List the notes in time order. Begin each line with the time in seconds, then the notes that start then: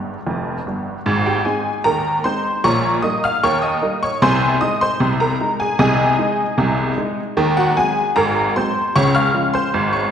Already playing: G1 G2 G#4 D#5
0.26 F1 F2
0.66 G1 G2
1.06 G#1 G#2
1.26 G4 G5
1.45 G#3 C4 D#4 G#4 G#5
1.84 D#2 D#3 A#4 A#5
2.24 G#3 C4 D#4 C5 C6
2.64 A#1 A#2 C#5 A#5 C#6
3.02 G3 A#3 D#4 D#5 D#6
3.24 F5 F6
3.43 D#2 D#3 C#5 C#6
3.62 D#5 D#6
3.82 G3 A#3 D#4
4.03 C#5 C#6
4.22 C2 C3 C5 G#5 C6
4.61 G#3 D#4 D#5 D#6
4.81 C5 C6
5.00 C2 C3
5.20 A#4 A#5
5.41 G#3 D#4
5.60 G#4 G#5
5.79 C2 C3 G#4 D#5 G#5
6.19 G#3 D#4
6.58 C2 C3
6.98 G#3 D#4
7.37 D#2 D#3
7.57 F#4 F#5
7.77 F#3 G#3 C4 G#4 G#5
8.16 G#1 G#2 A#4 A#5
8.56 F#3 G#3 C4 C5 C6
8.96 C#2 C#3 C#5 C#6
9.15 F5 F6
9.34 F3 G#3 C#4
9.54 C5 C6
9.74 G#1 G#2
9.93 C#5 C#6